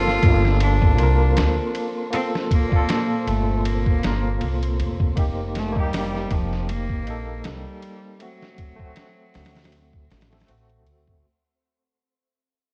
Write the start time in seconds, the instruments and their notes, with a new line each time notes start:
Already playing: upright bass G1, tine electric piano A#3 F4 A4, synth texture C4 C5, cello F4
0.08 snare
0.23 upright bass G1, kick, ride
0.45 snare
0.60 cello D4, ride
0.82 kick
0.95 upright bass C2, tine electric piano A#3 F4, ride
1.03 tine electric piano A#4
1.37 upright bass D2, snare, ride
1.75 ride
2.11 tine electric piano A#3 F4 A4, cello C4, ride
2.35 snare
2.51 cello A#3, kick, ride
2.69 tine electric piano A#2 F4, kick
2.76 tine electric piano A4
2.89 snare, ride
3.27 upright bass G1, cello A3, ride
3.65 cello A#3, ride
3.86 kick
3.99 tine electric piano A#3 F4, ride
4.04 upright bass G1, tine electric piano A#4, snare
4.41 upright bass C2, ride
4.63 ride
4.79 upright bass F1, ride
5.00 kick
5.16 tine electric piano A#3 D#4 G4, kick, ride
5.55 cello A3, snare, ride
5.72 tine electric piano A#3 D#4, kick
5.79 cello G3, tine electric piano G4
5.93 snare, open hi-hat
6.15 snare
6.30 upright bass F1, cello F3, kick, ride
6.53 snare
6.69 cello A#3, ride
6.90 kick
7.03 upright bass A#1, tine electric piano A#3 D#4, ride
7.10 tine electric piano A4
7.44 upright bass C2, cello G3, snare, ride
7.82 ride
8.19 cello F#3, tine electric piano A3 C4 F#4, ride
8.42 snare
8.58 kick, ride
8.76 tine electric piano A3 C4, kick
8.84 tine electric piano F#4
8.96 snare, ride
9.34 upright bass D2, snare, open hi-hat
9.45 snare, open hi-hat
9.55 snare, open hi-hat
9.64 snare, open hi-hat
9.72 ride
9.93 kick
10.10 upright bass A1, snare, open hi-hat
10.21 snare, open hi-hat
10.30 tine electric piano A3 C4 A4, snare, open hi-hat
10.40 snare, open hi-hat
10.47 upright bass A1, tine electric piano A3 C4 F#4, ride
10.69 ride
10.86 upright bass D2, ride
11.07 kick